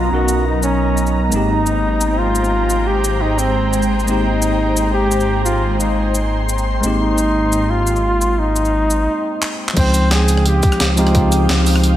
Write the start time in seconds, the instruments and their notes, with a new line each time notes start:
Already playing: ambient pad F#3 B3 D#5 A#5, tine electric piano D#4 A#4, flugelhorn F4
0.08 detuned saw bass B1, tine electric piano F#3 B3 C#4, flugelhorn F#4
0.13 tine electric piano D#4 A#4
0.28 cabasa
0.46 flugelhorn D#4
0.63 flugelhorn C#4, cabasa
0.97 cabasa
1.07 cabasa
1.29 detuned saw bass G#1, tine electric piano G#3 A#3 C4, ambient pad G#3 C5 G5, cabasa
1.34 tine electric piano D#4 G4
1.49 flugelhorn D#4
1.66 cabasa
2.01 cabasa
2.18 flugelhorn F4
2.35 cabasa
2.45 cabasa
2.70 cabasa
2.87 flugelhorn G4
3.04 cabasa
3.21 flugelhorn D#4
3.39 flugelhorn C4, cabasa
3.73 cabasa
3.82 cabasa
4.00 cabasa
4.04 tine electric piano G#3 A#3 C4, cabasa
4.09 tine electric piano D#4 G4
4.25 flugelhorn D#4
4.42 cabasa
4.77 cabasa
4.94 flugelhorn G4
5.11 cabasa
5.21 cabasa
5.45 flugelhorn F4, ambient pad C6, cabasa
5.80 flugelhorn D#4, cabasa
6.15 cabasa
6.49 cabasa
6.58 cabasa
6.80 detuned saw bass G#1, tine electric piano G#3 A#3 C4, cabasa
6.85 tine electric piano D#4 G4
7.01 flugelhorn D#4
7.18 cabasa
7.52 cabasa
7.70 flugelhorn F4
7.87 cabasa
7.96 cabasa
8.21 cabasa
8.39 flugelhorn D#4
8.56 cabasa
8.65 cabasa
8.90 cabasa
9.42 clap
9.69 clap
9.73 detuned saw bass C#2, tine electric piano F3 G#3 C4, ambient pad C5 F5 G5 D#6, flugelhorn C5, kick, closed hi-hat, crash
9.78 tine electric piano D#4 G5
9.94 closed hi-hat, cabasa
10.11 flugelhorn G#4, snare, closed hi-hat
10.28 closed hi-hat, cabasa
10.37 cross-stick
10.46 flugelhorn G4, closed hi-hat
10.63 kick, closed hi-hat, cabasa
10.72 cross-stick, cabasa
10.80 detuned saw bass C#2, snare, closed hi-hat
10.91 flugelhorn G4
10.96 tine electric piano F3 G#3 C4 D#4 G4, flugelhorn F4, closed hi-hat, cabasa
11.07 cross-stick, closed hi-hat
11.11 tine electric piano F3 G#3 C4, kick, closed hi-hat
11.16 tine electric piano D#4 G4
11.32 closed hi-hat, cabasa
11.49 detuned saw bass C#2, snare, closed hi-hat
11.66 open hi-hat, cabasa
11.76 cross-stick
11.84 closed hi-hat